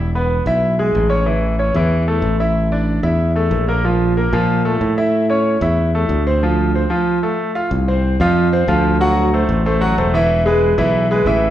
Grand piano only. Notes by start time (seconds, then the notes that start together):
0.15 B3 B4
0.47 E4 E5
0.79 G#3 G#4
1.10 C#4 C#5
1.26 E3 E4
1.59 C#4 C#5
1.76 E3 E4
2.08 A3 A4
2.40 E4 E5
2.72 D4 D5
3.03 E4 E5
3.36 A3 A4
3.68 A#3 A#4
3.84 F3 F4
4.17 A#3 A#4
4.33 F3 F4
4.65 A3 A4
4.98 E4 E5
5.30 C#4 C#5
5.62 E4 E5
5.95 A3 A4
6.27 C4 C5
6.43 F3 F4
6.75 C4 C5
6.90 F3 F4
7.23 A3 A4
7.55 F4 F5
7.88 C4 C5
8.21 F3 F4 F5
8.52 C4 C5
8.68 F3 F4 F5
9.00 F#3 F#4 F#5
9.33 A3 A4 C5
9.66 A3 A4 C5
9.81 F#3 F#4 F#5
9.98 A3 A4 C5
10.14 E3 E4 E5
10.46 G#3 G#4 B4
10.78 E3 E4 E5
11.11 G#3 G#4 B4
11.27 E3 E4 E5